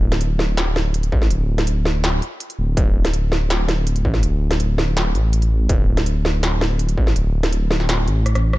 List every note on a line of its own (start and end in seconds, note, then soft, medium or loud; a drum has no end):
0.00 1.11 D1 loud
0.12 snare medium
0.12 closed hi-hat soft
0.21 closed hi-hat medium
0.39 snare medium
0.57 snare loud
0.57 closed hi-hat medium
0.76 snare medium
0.94 closed hi-hat medium
1.03 closed hi-hat soft
1.12 1.29 A1 medium
1.12 kick medium
1.22 snare medium
1.31 2.21 D1 loud
1.31 closed hi-hat medium
1.58 snare medium
1.58 closed hi-hat soft
1.67 closed hi-hat medium
1.85 snare medium
2.04 snare loud
2.04 closed hi-hat medium
2.22 closed hi-hat soft
2.40 closed hi-hat medium
2.50 closed hi-hat soft
2.59 2.76 D1 medium
2.77 4.04 D1 loud
2.77 kick loud
2.77 closed hi-hat medium
3.05 snare medium
3.05 closed hi-hat soft
3.13 closed hi-hat medium
3.32 snare medium
3.50 snare loud
3.50 closed hi-hat medium
3.69 snare medium
3.69 closed hi-hat soft
3.87 closed hi-hat medium
3.96 closed hi-hat soft
4.05 4.22 A1 medium
4.05 kick medium
4.14 snare soft
4.23 5.16 D1 loud
4.23 closed hi-hat medium
4.51 snare medium
4.51 closed hi-hat soft
4.60 closed hi-hat medium
4.78 snare medium
4.97 snare loud
4.97 closed hi-hat medium
5.14 5.68 A1 medium
5.14 closed hi-hat soft
5.33 closed hi-hat medium
5.42 closed hi-hat soft
5.69 6.96 D1 loud
5.69 kick loud
5.69 closed hi-hat medium
5.97 snare medium
5.97 closed hi-hat soft
6.06 closed hi-hat medium
6.25 snare medium
6.43 snare loud
6.43 closed hi-hat medium
6.61 snare medium
6.79 closed hi-hat medium
6.89 closed hi-hat soft
6.98 7.15 A1 loud
6.98 kick medium
7.07 snare medium
7.16 8.09 D1 loud
7.16 closed hi-hat medium
7.43 snare medium
7.43 closed hi-hat soft
7.52 closed hi-hat medium
7.71 snare medium
7.80 snare soft
7.89 snare loud
7.89 closed hi-hat medium
8.07 8.58 A1 medium
8.07 closed hi-hat soft
8.26 cross-stick medium
8.26 closed hi-hat medium
8.35 cross-stick medium
8.35 closed hi-hat soft
8.53 cross-stick medium